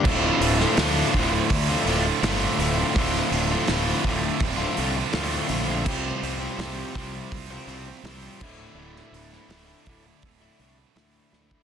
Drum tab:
CC |x---------------|----------------|x-------------x-|----------------|
HH |--o-o-o-o-o-o-o-|o-o-o-o-o-o-o-o-|--o-o-o-o-o-o---|--o-o-o-o-o-o---|
SD |---oo-------o---|-o--o-------o---|----o-------o---|-o-oo-------o-o-|
BD |o-----o-o-------|o-----o-o-------|o-----o-o-----o-|------o-o------o|